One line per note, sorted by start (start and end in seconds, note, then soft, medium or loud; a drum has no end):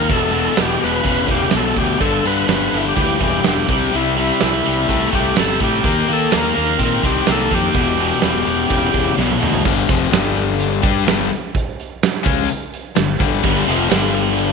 0.00 0.11 D#2 medium
0.00 0.13 A#4 medium
0.09 0.47 E1 medium
0.09 0.31 E2 medium
0.09 0.31 B2 medium
0.09 0.60 A4 medium
0.09 kick loud
0.09 closed hi-hat medium
0.32 0.53 E2 medium
0.32 0.54 B2 medium
0.32 closed hi-hat medium
0.55 0.77 E1 medium
0.55 0.78 E2 medium
0.55 0.78 B2 medium
0.55 snare loud
0.55 closed hi-hat medium
0.55 tambourine loud
0.60 0.84 G4 medium
0.79 1.01 E1 medium
0.79 1.02 E2 medium
0.79 1.02 B2 medium
0.79 closed hi-hat medium
0.84 1.28 B4 loud
1.03 1.24 E1 medium
1.03 1.26 E2 medium
1.03 1.26 C#3 medium
1.03 kick medium
1.03 closed hi-hat medium
1.27 1.47 E1 medium
1.27 1.50 E2 medium
1.27 1.51 C#3 medium
1.27 1.55 G4 medium
1.27 kick medium
1.27 closed hi-hat medium
1.51 1.72 B1 medium
1.51 1.75 E2 medium
1.51 1.75 B2 medium
1.51 snare loud
1.51 closed hi-hat medium
1.51 tambourine loud
1.56 1.78 A4 medium
1.76 1.96 D2 medium
1.76 1.99 E2 medium
1.76 1.99 B2 medium
1.76 2.03 G4 medium
1.76 kick medium
1.76 closed hi-hat medium
2.00 2.20 G1 medium
2.00 2.23 G2 medium
2.00 2.23 D3 medium
2.00 2.26 A4 medium
2.00 kick loud
2.00 closed hi-hat medium
2.24 2.43 G2 medium
2.24 2.47 G2 medium
2.24 2.47 D3 medium
2.24 2.47 B4 medium
2.24 closed hi-hat medium
2.48 2.67 G1 medium
2.48 2.70 G2 medium
2.48 2.70 D3 medium
2.48 2.79 B4 medium
2.48 snare loud
2.48 closed hi-hat medium
2.48 tambourine loud
2.71 2.92 G1 medium
2.71 2.94 G2 medium
2.71 2.95 D3 medium
2.71 closed hi-hat medium
2.77 2.85 E4 medium
2.88 3.21 G4 medium
2.95 3.15 D2 medium
2.95 3.18 G2 medium
2.95 3.18 E3 medium
2.95 kick medium
2.95 closed hi-hat medium
3.19 3.39 E1 medium
3.19 3.42 G2 medium
3.19 3.42 E3 medium
3.19 kick medium
3.19 closed hi-hat medium
3.24 3.45 G4 medium
3.43 3.64 E1 medium
3.43 3.66 G2 medium
3.43 3.66 D3 medium
3.43 snare loud
3.43 closed hi-hat medium
3.43 tambourine loud
3.48 3.69 G4 medium
3.68 3.87 C2 medium
3.68 3.90 C3 medium
3.68 3.90 G3 medium
3.68 kick medium
3.68 closed hi-hat medium
3.72 3.96 G4 medium
3.92 4.30 C2 medium
3.92 4.14 C3 medium
3.92 4.15 G3 medium
3.92 4.17 E4 medium
3.92 closed hi-hat medium
4.16 4.38 C3 medium
4.16 4.38 G3 medium
4.16 5.10 E4 medium
4.16 closed hi-hat medium
4.40 4.60 C2 medium
4.40 4.63 C3 medium
4.40 4.63 G3 medium
4.40 snare loud
4.40 closed hi-hat medium
4.40 tambourine loud
4.65 4.85 C2 medium
4.65 4.87 C3 medium
4.65 4.87 G3 medium
4.65 closed hi-hat medium
4.88 5.08 C2 medium
4.88 5.10 C3 medium
4.88 5.11 A3 medium
4.88 kick medium
4.88 closed hi-hat medium
5.12 5.31 C2 medium
5.12 5.34 C3 medium
5.12 5.35 A3 medium
5.12 5.36 G4 medium
5.12 kick medium
5.12 closed hi-hat medium
5.36 5.56 G1 medium
5.36 5.59 C3 medium
5.36 5.59 G3 medium
5.36 5.60 A4 medium
5.36 snare loud
5.36 closed hi-hat medium
5.36 tambourine loud
5.60 5.79 A2 medium
5.60 5.82 C3 medium
5.60 5.82 G3 medium
5.60 kick medium
5.60 closed hi-hat medium
5.64 6.12 G4 medium
5.83 6.03 D#2 medium
5.83 6.06 D#3 medium
5.83 6.07 A#3 loud
5.83 kick loud
5.83 closed hi-hat medium
6.07 6.30 D#3 medium
6.07 6.27 D#3 medium
6.07 6.30 A#3 medium
6.07 closed hi-hat medium
6.13 6.36 A4 medium
6.32 6.52 D#2 medium
6.32 6.54 D#3 medium
6.32 6.54 A#3 medium
6.32 snare loud
6.32 closed hi-hat medium
6.32 tambourine loud
6.37 6.82 A#4 medium
6.55 6.75 D#2 medium
6.55 6.78 D#3 medium
6.55 6.78 A#3 medium
6.55 closed hi-hat medium
6.78 6.98 A#2 medium
6.78 7.01 D#3 medium
6.78 7.01 C4 medium
6.78 kick medium
6.78 closed hi-hat medium
6.83 7.04 A#4 medium
7.03 7.22 C2 medium
7.03 7.25 D#3 medium
7.03 7.25 C4 medium
7.03 7.30 G4 medium
7.03 kick medium
7.03 closed hi-hat medium
7.27 7.46 C2 medium
7.27 7.49 D#3 medium
7.27 7.49 A#3 medium
7.27 snare loud
7.27 closed hi-hat medium
7.27 tambourine loud
7.32 7.54 A4 medium
7.51 7.70 F2 medium
7.51 7.73 D#3 medium
7.51 7.73 A#3 medium
7.51 9.16 G4 medium
7.51 kick medium
7.51 closed hi-hat medium
7.74 8.11 E1 loud
7.74 7.97 E2 medium
7.74 7.97 B2 medium
7.74 kick loud
7.74 closed hi-hat medium
7.98 8.21 E2 medium
7.98 8.21 B2 medium
7.98 closed hi-hat medium
8.22 8.42 E1 medium
8.22 8.44 E2 medium
8.22 8.45 B2 medium
8.22 snare loud
8.22 closed hi-hat medium
8.22 tambourine loud
8.45 8.65 E1 medium
8.45 8.68 E2 medium
8.45 8.68 B2 medium
8.45 closed hi-hat medium
8.70 8.89 E1 medium
8.70 8.92 E2 medium
8.70 8.92 C#3 medium
8.70 kick medium
8.70 closed hi-hat medium
8.93 9.12 E1 medium
8.93 9.16 E2 medium
8.93 9.16 C#3 medium
8.93 kick medium
8.93 closed hi-hat medium
9.18 9.36 B1 medium
9.18 9.39 E2 medium
9.18 9.39 B2 medium
9.18 snare medium
9.31 high tom medium
9.40 9.60 D2 medium
9.40 9.62 E2 medium
9.40 9.62 B2 medium
9.40 mid tom medium
9.54 floor tom medium
9.64 9.88 G1 loud
9.64 9.88 G2 medium
9.64 9.88 D3 loud
9.64 9.89 G3 loud
9.64 kick loud
9.64 crash loud
9.89 10.11 F1 medium
9.89 10.11 F2 medium
9.89 10.12 C3 medium
9.89 10.12 F3 medium
9.89 kick loud
9.89 closed hi-hat medium
10.11 10.79 G1 loud
10.11 10.82 G2 medium
10.11 10.83 D3 medium
10.11 10.81 G3 loud
10.11 snare loud
10.11 closed hi-hat loud
10.11 tambourine loud
10.37 closed hi-hat medium
10.60 closed hi-hat loud
10.82 11.06 G2 loud
10.82 11.05 G3 medium
10.82 11.06 D4 loud
10.82 11.06 G4 loud
10.82 kick loud
10.82 closed hi-hat medium
11.05 11.29 G1 loud
11.05 11.29 G2 loud
11.05 11.29 D3 loud
11.05 11.29 G3 loud
11.05 snare loud
11.05 closed hi-hat loud
11.05 tambourine loud
11.32 closed hi-hat medium
11.55 kick loud
11.55 closed hi-hat loud
11.80 closed hi-hat medium
12.03 snare loud
12.03 closed hi-hat loud
12.03 tambourine loud
12.23 12.47 C#2 loud
12.23 12.47 C#3 loud
12.23 12.48 G#3 loud
12.23 12.48 C#4 loud
12.23 kick loud
12.23 closed hi-hat medium
12.49 muted overdriven electric guitar stroke medium
12.49 muted fingered electric bass stroke soft
12.49 closed hi-hat loud
12.74 closed hi-hat medium
12.96 13.18 G1 medium
12.96 13.14 G2 medium
12.96 13.15 D3 medium
12.96 snare loud
12.96 closed hi-hat loud
12.96 tambourine loud
13.19 13.41 G1 medium
13.19 13.42 G2 medium
13.19 13.43 D3 loud
13.19 13.43 G3 loud
13.19 kick loud
13.19 closed hi-hat medium
13.44 13.65 G1 loud
13.44 13.66 G2 loud
13.44 13.66 D3 loud
13.44 13.67 G3 loud
13.44 kick loud
13.44 closed hi-hat loud
13.67 13.88 F1 medium
13.67 13.89 F2 loud
13.67 13.89 C3 loud
13.67 13.90 F3 medium
13.67 closed hi-hat medium
13.89 14.52 G1 loud
13.89 14.52 G2 loud
13.89 14.52 D3 loud
13.89 14.52 G3 loud
13.89 snare loud
13.89 closed hi-hat loud
13.89 tambourine loud
14.15 closed hi-hat medium
14.38 closed hi-hat loud